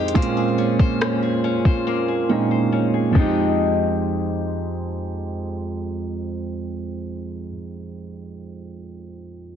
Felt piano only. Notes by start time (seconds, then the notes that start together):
Already playing: F2 G#3 C4 D#4 G4 G#4 A#4 C5
0.14 A#2 G#3 C4 C#4 F4
2.29 A#2 G#3 C4 C#4 D#4
3.11 F2 G#3
3.15 C4 D#4
3.20 G4